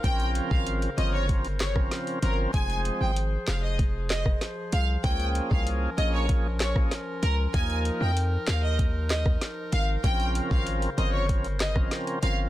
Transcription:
Already playing: woodwind section A#4
0.04 808-style bass A#1, woodwind section C#3 C5, tonewheel organ F3 C4 C#4 A#4, violin section G5, kick, closed hi-hat
0.20 closed hi-hat
0.35 closed hi-hat
0.51 808-style bass G#1, violin section F5, kick
0.67 closed hi-hat
0.82 closed hi-hat
0.97 808-style bass G1, tonewheel organ F3 C4 C#4 A#4, violin section D#5, closed hi-hat
1.13 violin section C#5
1.29 tonewheel organ F3 C4 C#4 A#4, kick, closed hi-hat
1.45 closed hi-hat
1.60 violin section C#5, snare, clap, closed hi-hat
1.76 tonewheel organ F3 C4 C#4 A#4, kick, cross-stick
1.91 snare, closed hi-hat
2.07 closed hi-hat
2.22 808-style bass G1, tonewheel organ F3 C4 C#4 A#4, violin section A#4, closed hi-hat
2.54 808-style bass F1, tonewheel organ F3 G#3 C4 G#4, woodwind section F3 G#4, violin section G#5, kick, closed hi-hat
2.70 closed hi-hat
2.85 closed hi-hat
3.01 808-style bass G#1, violin section G5
3.16 closed hi-hat
3.47 808-style bass F1, violin section F5, snare, clap, closed hi-hat
3.63 violin section D#5
3.79 kick, closed hi-hat
4.10 violin section D#5, snare, clap, closed hi-hat
4.26 kick, cross-stick
4.41 snare, closed hi-hat
4.72 808-style bass C2, violin section F5, closed hi-hat
5.04 808-style bass C#2, tonewheel organ F3 A#3 C#4 G#4, woodwind section C#4 A#4, violin section G5, kick, closed hi-hat
5.20 closed hi-hat
5.35 closed hi-hat
5.51 808-style bass C2, violin section F5, kick
5.67 closed hi-hat
5.98 808-style bass A#1, tonewheel organ F3 A#3 C#4 G#4, violin section D#5, closed hi-hat
6.14 violin section C#5
6.29 tonewheel organ F3 A#3 C#4 G#4, kick, closed hi-hat
6.60 violin section C#5, snare, clap, closed hi-hat
6.76 tonewheel organ F3 A#3 C#4 G#4, kick, cross-stick
6.91 snare, closed hi-hat
7.23 808-style bass C#2, violin section A#4, closed hi-hat
7.54 808-style bass D#2, tonewheel organ F3 A#3 D#4 A#4, woodwind section D#4, violin section G#5, kick, closed hi-hat
7.70 closed hi-hat
7.85 closed hi-hat
8.01 808-style bass F2, violin section G5
8.17 closed hi-hat
8.47 808-style bass D#2, violin section F5, snare, clap, closed hi-hat
8.63 violin section D#5
8.79 kick, closed hi-hat
9.10 violin section D#5, snare, clap, closed hi-hat
9.26 kick, cross-stick
9.41 snare, closed hi-hat
9.72 808-style bass G#1, violin section F5, closed hi-hat
10.03 808-style bass A#1, woodwind section C#3 C5, tonewheel organ F3 C4 C#4 A#4, violin section G5, kick, closed hi-hat
10.20 closed hi-hat
10.35 closed hi-hat
10.51 808-style bass G#1, violin section F5, kick
10.67 closed hi-hat
10.82 closed hi-hat
10.97 808-style bass G1, tonewheel organ F3 C4 C#4 A#4, violin section D#5, closed hi-hat
11.13 violin section C#5
11.29 tonewheel organ F3 C4 C#4 A#4, kick, closed hi-hat
11.44 closed hi-hat
11.60 violin section D#5, snare, clap, closed hi-hat
11.75 tonewheel organ F3 C4 C#4 A#4, kick, cross-stick
11.91 snare, closed hi-hat
12.07 closed hi-hat
12.22 808-style bass G1, tonewheel organ F3 C4 C#4 A#4, violin section F5, closed hi-hat

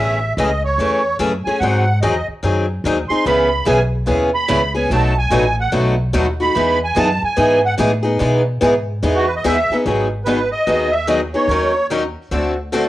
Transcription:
Already playing: upright bass A1, steel-string acoustic guitar C#3 E3 A3, accordion E5
0.00 steel-string acoustic guitar C#4 G#4
0.37 upright bass C#2, steel-string acoustic guitar C#3 E3 A3 C#4 G#4, accordion D#5
0.65 accordion C#5
0.78 upright bass E2, steel-string acoustic guitar C#3 E3 A3 C#4 G#4
1.19 upright bass F#2, steel-string acoustic guitar C#3 E3 A3 C#4 G#4
1.44 steel-string acoustic guitar C#4 G#4, accordion G#5, muted upright bass stroke
1.49 steel-string acoustic guitar A3
1.60 upright bass G#2, steel-string acoustic guitar D#3 F#3 C4 D#4 G#4, accordion F#5
2.02 upright bass E2, steel-string acoustic guitar D#3 F#3 C4 D#4 G#4, accordion D#5
2.28 muted upright bass stroke
2.43 upright bass F#2, steel-string acoustic guitar D#3 F#3 C4 D#4 G#4
2.84 upright bass D#2, steel-string acoustic guitar D#3 F#3 C4 D#4 G#4
3.09 steel-string acoustic guitar C4 D#4 G#4, accordion C6, muted upright bass stroke
3.26 upright bass C#2, steel-string acoustic guitar C#3 E3 G#3 B3 C#4 E4 G#4, accordion B5
3.65 upright bass B1, steel-string acoustic guitar C#3 E3 G#3 B3 C#4 E4 G#4, accordion G#5
4.06 upright bass D#2, steel-string acoustic guitar C#3 E3 G#3 B3 C#4 E4 G#4
4.35 accordion B5
4.48 upright bass C#2, steel-string acoustic guitar C#3 E3 G#3 B3 C#4 E4 G#4
4.75 steel-string acoustic guitar B3 C#4 G#4, accordion G#5
4.90 upright bass B1, steel-string acoustic guitar B2 F#3 A3 D#4 F#4 B4, accordion A5
5.18 accordion G#5
5.30 upright bass A1, steel-string acoustic guitar B2 F#3 A3 D#4 F#4 B4
5.61 accordion F#5
5.72 upright bass B1, steel-string acoustic guitar B2 F#3 A3 D#4 F#4 B4
6.13 upright bass D#2, steel-string acoustic guitar B2 F#3 A3 D#4 F#4 B4
6.40 steel-string acoustic guitar A3 D#4 F#4, accordion B5
6.55 upright bass E2, steel-string acoustic guitar E3 G#3 B3 D#4 G#4
6.84 accordion G#5
6.96 upright bass F#2, steel-string acoustic guitar E3 G#3 B3 D#4 G#4, accordion A5
7.22 accordion G#5, muted upright bass stroke
7.37 upright bass G#2, steel-string acoustic guitar E3 G#3 B3 D#4 G#4
7.66 accordion F#5
7.78 upright bass A2, steel-string acoustic guitar E3 G#3 B3 D#4 G#4
8.03 steel-string acoustic guitar B3 D#4 G#4
8.19 upright bass B2, steel-string acoustic guitar E3 G#3 B3 D#4 G#4
8.61 upright bass G#2, steel-string acoustic guitar E3 G#3 B3 D#4 G#4
9.02 upright bass E2, steel-string acoustic guitar E3 G#3 B3 D#4 G#4
9.15 accordion F#4
9.25 accordion B4
9.36 accordion D#5
9.44 upright bass D#2, steel-string acoustic guitar E3 G#3 B3 D#4 G#4, accordion E5
9.70 steel-string acoustic guitar B3 D#4 G#4, muted upright bass stroke
9.86 upright bass G#1, steel-string acoustic guitar D#3 F#3 B3 D#4 G#4
10.25 steel-string acoustic guitar D#3 F#3 B3 D#4 G#4, accordion B4
10.52 accordion D#5
10.67 upright bass D#2, steel-string acoustic guitar D#3 F#3 B3 D#4 G#4
10.92 accordion E5
11.07 steel-string acoustic guitar D#3 F#3 B3 D#4 G#4, accordion D#5
11.34 steel-string acoustic guitar B3 D#4 G#4, accordion C#5
11.48 upright bass D#2, steel-string acoustic guitar D#3 F#3 C#4 D#4 A#4
11.90 steel-string acoustic guitar D#3 F#3 C#4 D#4 A#4
12.31 upright bass D2, steel-string acoustic guitar D3 A3 C4 F#4 A4
12.72 steel-string acoustic guitar D3 A3 C4 F#4 A4

